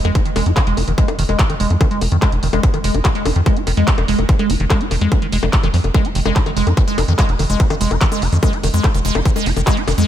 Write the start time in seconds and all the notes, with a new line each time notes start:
Already playing: impact
0.05 F2 G#3, closed hi-hat, high bongo
0.15 F#4, kick, closed hi-hat
0.26 D#3, closed hi-hat
0.36 F1 G#3, open hi-hat, high bongo
0.46 F2 F#4, closed hi-hat
0.57 D#3, kick, clap, closed hi-hat, high bongo
0.67 F1 G#3, closed hi-hat
0.77 F1 F#4, open hi-hat, high bongo
0.88 F1 D#3, closed hi-hat
0.98 G#3, kick, closed hi-hat
1.08 F#4, closed hi-hat, high bongo
1.19 F1 D#3, open hi-hat
1.29 F1 G#3, closed hi-hat, high bongo
1.39 F#4, kick, clap, closed hi-hat
1.50 D#3, closed hi-hat, high bongo
1.60 F1 G#3, open hi-hat
1.70 F2 F#4, closed hi-hat
1.81 D#3, kick, closed hi-hat, high bongo
1.91 G#3, closed hi-hat
2.01 F1 F#4, open hi-hat, high bongo
2.12 F2 D#3, closed hi-hat
2.22 G#3, kick, clap, closed hi-hat, high bongo
2.32 F1 F#4, closed hi-hat
2.43 F1 D#3, open hi-hat
2.53 F1 G#3, closed hi-hat, high bongo
2.63 F#4, kick, closed hi-hat
2.74 D#3, closed hi-hat, high bongo
2.84 F1 G#3, open hi-hat
2.94 F1 F#4, closed hi-hat, high bongo
3.05 D#3, kick, clap, closed hi-hat
3.15 G#3, closed hi-hat
3.25 F1 F#4, open hi-hat, high bongo
3.36 F2 D#3, closed hi-hat
3.46 G#3, kick, closed hi-hat, high bongo
3.57 F#4, closed hi-hat
3.67 F1 D#3, open hi-hat, high bongo
3.77 F2 G#3, closed hi-hat
3.88 F#4, kick, clap, closed hi-hat
3.98 F1 D#3, closed hi-hat, high bongo
4.08 F1 G#3, open hi-hat
4.19 F1 F#4, closed hi-hat, high bongo
4.29 D#3, kick, closed hi-hat
4.39 G#3, closed hi-hat, high bongo
4.50 F1 F#4, open hi-hat
4.60 F1 D#3, closed hi-hat
4.70 G#3, kick, clap, closed hi-hat, high bongo
4.81 F#4, closed hi-hat
4.91 F1 D#3, open hi-hat, high bongo
5.01 F2 G#3, closed hi-hat
5.12 F#4, kick, closed hi-hat, high bongo
5.22 D#3, closed hi-hat
5.32 F1 G#3, open hi-hat
5.43 F1 F3, closed hi-hat, high bongo
5.53 kick, clap, closed hi-hat
5.63 F1 D#3, closed hi-hat, high bongo
5.74 F2 F3, open hi-hat
5.84 F1, closed hi-hat, high bongo
5.94 G#3, kick, closed hi-hat, high bongo
6.05 F#4, closed hi-hat
6.15 F1 D#3, open hi-hat
6.25 F1 G#3, closed hi-hat, high bongo
6.36 F#4, kick, clap, closed hi-hat
6.46 D#3, closed hi-hat, high bongo
6.57 F1 G#3, open hi-hat
6.67 F2 F#4, closed hi-hat, high bongo
6.77 D#3, kick, closed hi-hat
6.88 G#3, closed hi-hat
6.98 F1 F#4, open hi-hat, high bongo
7.08 F2 D#3, closed hi-hat
7.19 G#3, kick, clap, closed hi-hat, high bongo
7.29 F1 F#4, closed hi-hat
7.39 F1 D#3, open hi-hat, high bongo
7.50 F1 G#3, closed hi-hat
7.60 F#4, kick, closed hi-hat
7.70 D#3, closed hi-hat, high bongo
7.81 F1 G#3, open hi-hat
7.91 F1 F#4, closed hi-hat, high bongo
8.01 D#3, kick, clap, closed hi-hat
8.12 G#3, closed hi-hat, high bongo
8.22 F1 F#4, open hi-hat
8.32 F2 D#3, closed hi-hat
8.43 G#3, kick, closed hi-hat, high bongo
8.53 F#4, closed hi-hat
8.63 F1 D#3, open hi-hat, high bongo
8.74 F2 G#3, closed hi-hat
8.84 F#4, kick, clap, closed hi-hat, high bongo
8.94 F1 D#3, closed hi-hat
9.05 F1 G#3, open hi-hat
9.15 F1 F#4, closed hi-hat, high bongo
9.25 D#3, kick, closed hi-hat
9.36 G#3, closed hi-hat, high bongo
9.46 F1 F#4, open hi-hat
9.57 F1 D#3, closed hi-hat, high bongo
9.67 G#3, kick, clap, closed hi-hat
9.77 F#4, closed hi-hat
9.88 F1 D#3, open hi-hat, high bongo
9.98 F2 G#3, closed hi-hat